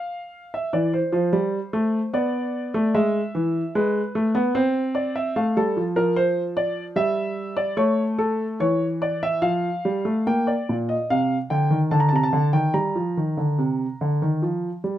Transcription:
Already playing: F5
0.54 E5
0.73 E3 D5
0.93 C5
1.12 F3 C5
1.33 G3
1.73 A3
2.13 B3 D5
2.74 A3
2.94 G#3 E5
3.35 E3
3.75 G#3 B4
4.15 A3
4.35 B3
4.55 C4 C5
4.95 D5
5.16 E5
5.36 A3 F5
5.57 G3 A4
5.77 F3
5.96 F3 A#4
6.16 C5
6.57 D5
6.96 G3 E5
7.57 D5
7.77 A3 C#5
8.18 A4
8.60 E3 C#5
9.02 D5
9.23 E5
9.42 F3 F5
9.85 G3
10.05 A3
10.27 A#3 G5
10.47 D5
10.69 A#2
10.89 D#5
11.10 C3 F5
11.50 D3 G5
11.71 D#3
11.91 D3 A5
12.00 A#5
12.09 C3 A5
12.16 A#5
12.23 A5
12.33 D3
12.53 D#3 G5
12.74 G3 A#5
12.96 F3
13.17 D#3
13.37 D3
13.58 C3
14.01 D3
14.22 D#3
14.42 F3
14.84 G3

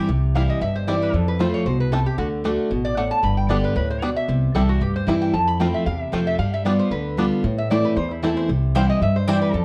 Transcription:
0.09 C2 C3
0.35 E3 G3 C4 E4 F5
0.50 D#5
0.61 G1 G2 E5
0.76 C5
0.87 E3 G3 C4 E4 D5
1.02 B4
1.13 F2 A4
1.28 B4
1.39 F3 A3 C4 F4 C5
1.54 C#5
1.66 C2 B2 C5
1.80 B4
1.92 C3 A3 C4 F4 A4
2.06 G4
2.18 D2 D3 F#4
2.44 D3 A3 D4 F#4
2.71 A1 B2
2.85 D5
2.97 A2 A3 D4 F#5
3.11 A5
3.23 G1 G2 B5
3.37 G5
3.49 D3 G3 B3 D4 G4 D5
3.64 B4
3.75 D2 A2 B4
3.90 C5
4.02 B2 G3 B3 D4 D5
4.16 E5
4.28 C2 C3
4.54 C2 E3 G3 C4 E4 A4
4.69 F#4
4.81 D2 G2 G4
4.96 C5
5.07 E2 E3 G3 C4 E4 E5
5.22 G5
5.33 F2 A5
5.47 B5
5.60 F3 A3 C4 F4 G5
5.74 E5
5.86 E2 C3 F5
6.01 E5
6.12 F2 F3 A3 C4 F4 C5
6.27 E5
6.39 G2 G3 F5
6.54 E5
6.65 G3 B3 D4 F4 D5
6.79 C5
6.91 D2 D3 B4
7.17 G3 B3 D4 F4
7.44 A2
7.58 E5
7.70 E3 A3 C4 E4 D5
7.85 B4
7.96 E2 C5
8.11 E4
8.23 E3 A3 C4 E4 A4
8.37 C5
8.49 C2 C3
8.75 E3 G3 C4 E4 C5 F5 G5
8.90 D#5
9.01 G2 E5
9.16 C5
9.28 E3 G3 C4 E4 C5 D5 G5
9.42 B4
9.54 F2 A4

